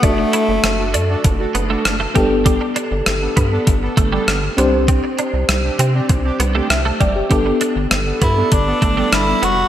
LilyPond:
<<
  \new Staff \with { instrumentName = "FM electric piano" } { \time 4/4 \key g \major \tempo 4 = 99 << { r1 | r1 | r2. e''8 d''16 g'16~ | g'16 r2. r8. | } \\ { <a d' fis' a'>2.~ <a d' fis' a'>8 <b d' g' a'>8~ | <b d' g' a'>2.~ <b d' g' a'>8 <c' d' g' c''>8~ | <c' d' g' c''>2.~ <c' d' g' c''>8 r8 | <b d' g' a'>2. <g b d' a'>4 | } >> }
  \new Staff \with { instrumentName = "Tenor saxophone" } { \time 4/4 \key g \major a2 r2 | r1 | r1 | r4. e'8 d'4 e'8 fis'8 | }
  \new Staff \with { instrumentName = "Analog polysynth" } { \time 4/4 \key g \major r4 r16 <d' fis' a'>16 r16 <d' fis' a'>16 r16 <d' fis' a'>16 r16 <d' fis' a'>8 r8. | r4 r16 <b d' a'>16 r16 <b d' a'>16 r16 <b d' a'>16 r16 <b d' a'>8 r8. | r4 r16 <c' d' g'>16 r16 <c' d' g'>16 r16 <c' d' g'>16 r16 <c' d' g'>8 r8. | r4 r16 <b d' a'>16 r16 <b d' a'>16 r16 <b d' a'>16 r16 <b d' a'>8 r8. | }
  \new Staff \with { instrumentName = "Clean electric guitar" } { \time 4/4 \key g \major d'16 r16 e'16 r8. d'16 r8. b16 a16 r16 a16 g16 r16 | g16 r16 d'16 r8. b16 r8. a16 g16 r8 b16 r16 | c'16 r16 d'16 r8. c'16 r8. b16 a16 r16 a16 g16 r16 | g16 r16 d'16 r8. b16 r8. a16 g16 r8 b16 r16 | }
  \new Staff \with { instrumentName = "Analog synth bass" } { \clef bass \time 4/4 \key g \major fis,,8 r16 fis,,16 fis,,8 fis,8 fis,,8 fis,,8 fis,,8 g,,8~ | g,,8 r16 g,,16 g,,8 g,8 g,,8 g,,8 g,,8 c,8~ | c,8 r16 c,16 c,8 c8 c,8 c,8 c,8 fis,,8 | g,,8 r16 g,,16 g,,8 g,8 g,,8 g,,8 g,,8 f,,8 | }
  \new DrumStaff \with { instrumentName = "Drums" } \drummode { \time 4/4 <hh bd>8 hh8 <hh ss>8 hh8 <hh bd>8 hh8 <hh ss>8 <hh bd>8 | <hh bd>8 hh8 <hh ss>8 <hh bd>8 <hh bd>8 <hh bd>8 <hh ss>8 hh8 | <hh bd>8 hh8 <hh ss>8 hh8 <hh bd>8 hh8 <hh ss>8 <hh bd>8 | <hh bd>8 hh8 <hh ss>8 <hh bd>8 <hh bd>8 <hh bd>8 <hh ss>8 hh8 | }
>>